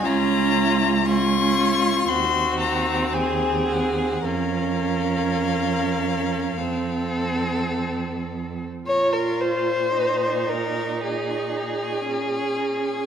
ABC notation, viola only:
X:1
M:4/4
L:1/8
Q:1/4=56
K:Bbm
V:1 name="Viola"
D2 D2 C4 | D4 C4 | F2 E4 D2 |]